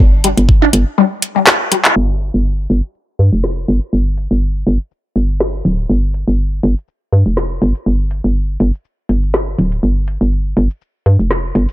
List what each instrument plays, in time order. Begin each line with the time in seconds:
0.00 fm bass G1, kick
0.24 synth arpeggio sound G3, closed hi-hat
0.37 fm bass G1, closed hi-hat
0.49 kick
0.62 synth arpeggio sound D4
0.73 fm bass G1, closed hi-hat
0.98 synth arpeggio sound G3
1.22 closed hi-hat
1.36 synth arpeggio sound G3
1.47 snare, clap
1.72 synth arpeggio sound G3, closed hi-hat
1.85 clap, closed hi-hat
1.96 fm bass G1
2.21 closed hi-hat
2.34 fm bass G1, shaker
2.45 shaker
2.70 fm bass G1, closed hi-hat
2.83 shaker
2.95 shaker
3.19 fm bass G2, closed hi-hat
3.33 fm bass F1, shaker
3.44 snare
3.68 fm bass G1, closed hi-hat
3.82 closed hi-hat, shaker
3.93 fm bass G1, shaker
4.17 closed hi-hat
4.31 fm bass G1, shaker
4.42 shaker
4.67 fm bass G1, closed hi-hat
4.80 shaker
4.91 shaker
5.16 fm bass G1, closed hi-hat
5.29 shaker
5.40 snare, shaker
5.65 fm bass D1, closed hi-hat
5.78 closed hi-hat, shaker
5.90 fm bass G1, shaker
6.14 closed hi-hat
6.28 fm bass G1, shaker
6.39 shaker
6.63 fm bass G1, closed hi-hat
6.77 shaker
6.88 shaker
7.13 fm bass G2, closed hi-hat
7.26 fm bass F1, shaker
7.37 snare, shaker
7.62 fm bass G1, closed hi-hat
7.75 closed hi-hat, shaker
7.86 fm bass G1, shaker
8.11 closed hi-hat
8.24 fm bass G1, shaker
8.35 shaker
8.60 fm bass G1, closed hi-hat
8.73 shaker
8.85 shaker
9.09 fm bass G1, closed hi-hat
9.23 shaker
9.34 snare, shaker
9.59 fm bass D1, closed hi-hat
9.72 closed hi-hat, shaker
9.83 fm bass G1, shaker
10.08 closed hi-hat
10.21 fm bass G1, shaker
10.32 shaker
10.57 fm bass G1, closed hi-hat
10.70 shaker
10.81 shaker
11.06 fm bass G2, closed hi-hat
11.19 fm bass F1, shaker
11.31 snare, shaker
11.55 fm bass G1, closed hi-hat
11.69 closed hi-hat, shaker